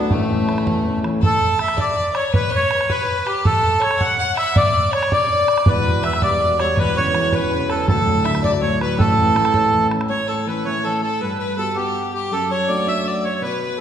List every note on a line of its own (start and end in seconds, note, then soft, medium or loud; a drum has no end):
0.00 0.12 B3 medium
0.00 0.13 D4 medium
0.11 1.19 A1 medium
0.11 0.47 A2 medium
0.11 1.00 A3 medium
0.11 1.04 A3 medium
0.11 bodhran medium
0.29 0.46 E3 medium
0.29 0.47 A3 soft
0.29 0.47 C#4 medium
0.29 bodhran soft
0.48 0.77 E3 medium
0.48 0.78 A3 soft
0.48 0.78 C#4 medium
0.48 bodhran medium
0.58 bodhran medium
0.66 1.02 E2 medium
0.66 bodhran medium
0.84 1.01 E3 medium
0.84 1.02 A3 soft
0.84 1.02 C#4 medium
1.03 1.18 E3 medium
1.03 1.18 A3 soft
1.03 1.18 C#4 medium
1.03 bodhran medium
1.22 1.78 A4 medium
1.22 1.58 A4 loud
1.22 bodhran medium
1.41 bodhran soft
1.59 1.80 E5 loud
1.59 bodhran medium
1.68 bodhran medium
1.77 2.13 D5 medium
1.77 2.17 D5 loud
1.77 bodhran medium
2.14 2.34 C#5 medium
2.14 2.25 C#5 medium
2.14 bodhran medium
2.33 2.52 B4 medium
2.33 2.51 B4 loud
2.33 bodhran medium
2.51 2.88 C#5 medium
2.51 bodhran soft
2.55 2.92 C#5 loud
2.71 bodhran medium
2.81 bodhran medium
2.89 3.28 B4 medium
2.89 3.28 B4 loud
2.89 bodhran medium
3.26 3.46 G4 medium
3.26 bodhran medium
3.44 3.81 A4 medium
3.44 3.83 A4 loud
3.44 bodhran medium
3.64 bodhran soft
3.80 4.00 C#5 medium
3.80 4.01 C#5 loud
3.80 bodhran medium
3.91 bodhran medium
3.98 4.18 F#5 loud
3.98 bodhran medium
4.19 4.36 F#5 medium
4.19 4.30 F#5 loud
4.32 4.37 F#5 medium
4.36 4.57 E5 medium
4.36 4.56 E5 loud
4.36 bodhran medium
4.55 4.93 D5 loud
4.55 4.91 D5 loud
4.55 bodhran medium
4.75 bodhran soft
4.91 5.10 C#5 medium
4.91 5.13 C#5 medium
4.91 bodhran medium
5.03 bodhran medium
5.12 5.63 D5 medium
5.12 5.69 D5 loud
5.12 bodhran medium
5.48 bodhran medium
5.58 bodhran medium
5.66 6.74 E1 medium
5.66 6.74 E2 medium
5.66 6.04 B4 medium
5.66 6.05 B4 loud
5.66 bodhran medium
5.85 6.04 B2 medium
5.85 bodhran soft
6.03 6.22 E3 medium
6.03 6.23 E5 medium
6.03 6.14 E5 loud
6.03 bodhran medium
6.13 6.22 E5 medium
6.13 bodhran medium
6.22 6.41 G3 medium
6.22 6.58 D5 medium
6.22 6.60 D5 loud
6.22 bodhran medium
6.42 6.59 B2 medium
6.59 6.77 G3 medium
6.59 6.76 C#5 medium
6.59 6.78 C#5 medium
6.59 bodhran medium
6.77 7.84 E1 medium
6.77 7.85 E2 medium
6.77 6.97 B4 medium
6.77 6.97 B4 loud
6.77 bodhran medium
6.96 7.14 C#3 medium
6.96 7.35 C#5 medium
6.96 7.35 C#5 loud
6.96 bodhran soft
7.14 7.32 E3 medium
7.14 bodhran medium
7.33 7.51 C#4 medium
7.33 7.72 B4 medium
7.33 7.71 B4 loud
7.33 bodhran medium
7.51 7.69 C#3 medium
7.69 7.87 C#4 medium
7.69 7.87 A4 medium
7.69 7.88 A4 medium
7.69 bodhran medium
7.88 8.95 D1 medium
7.88 8.96 D2 medium
7.88 8.23 A4 medium
7.88 8.26 A4 medium
7.88 bodhran medium
8.06 8.24 A2 medium
8.06 bodhran soft
8.25 8.43 D3 medium
8.25 8.41 E5 medium
8.25 8.43 E5 medium
8.25 bodhran medium
8.35 bodhran medium
8.42 8.62 F#3 medium
8.42 8.57 D5 medium
8.42 8.52 D5 medium
8.42 bodhran medium
8.57 8.63 D5 medium
8.61 8.80 A2 medium
8.61 8.81 C#5 medium
8.61 8.79 C#5 medium
8.81 8.99 F#3 medium
8.81 8.98 B4 medium
8.81 bodhran medium
8.98 10.06 A1 medium
8.98 10.06 A2 medium
8.98 9.87 A4 medium
8.98 bodhran medium
9.17 9.35 E3 medium
9.17 bodhran soft
9.35 9.54 A3 medium
9.35 bodhran medium
9.45 bodhran medium
9.54 9.72 C#4 medium
9.54 bodhran medium
9.73 9.91 E3 medium
9.91 10.10 C#4 medium
9.91 bodhran medium
10.01 bodhran medium
10.09 11.18 A2 medium
10.09 10.30 C#5 medium
10.09 10.27 C#5 medium
10.28 10.45 A4 medium
10.28 10.49 A4 medium
10.47 10.64 E3 soft
10.47 10.64 A3 soft
10.47 10.64 C#4 medium
10.47 10.66 B4 medium
10.47 10.65 B4 medium
10.65 11.01 E3 soft
10.65 11.01 A3 soft
10.65 11.01 C#4 medium
10.65 10.84 C#5 medium
10.65 10.86 C#5 medium
10.84 11.01 A4 medium
10.84 11.02 A4 medium
11.03 11.23 A4 medium
11.03 11.20 A4 medium
11.21 12.28 G2 medium
11.21 11.38 B4 medium
11.39 11.56 B4 medium
11.39 11.57 B4 medium
11.57 11.74 G3 soft
11.57 11.74 B3 soft
11.57 11.94 F#4 soft
11.57 11.74 A4 medium
11.57 11.77 A4 medium
11.75 12.12 G3 soft
11.75 12.12 B3 soft
11.75 12.12 G4 medium
11.75 12.11 G4 medium
11.75 12.12 F#5 medium
12.13 12.32 G4 medium
12.13 12.34 G4 medium
12.31 13.39 F#2 medium
12.31 12.51 A4 loud
12.31 12.51 A4 medium
12.51 12.70 C#5 medium
12.51 12.90 C#5 medium
12.68 12.86 A3 soft
12.68 12.86 D4 soft
12.68 12.87 F#4 medium
12.68 12.87 D5 medium
12.87 13.23 A3 medium
12.87 13.23 D4 soft
12.87 13.24 F#4 medium
12.87 13.06 E5 loud
12.87 13.10 E5 medium
13.06 13.23 D5 medium
13.06 13.27 D5 medium
13.24 13.34 C#5 medium
13.24 13.43 C#5 medium
13.35 13.42 C#5 medium
13.42 13.80 B2 medium
13.42 13.80 B4 loud
13.42 13.60 B4 medium
13.61 13.80 B4 medium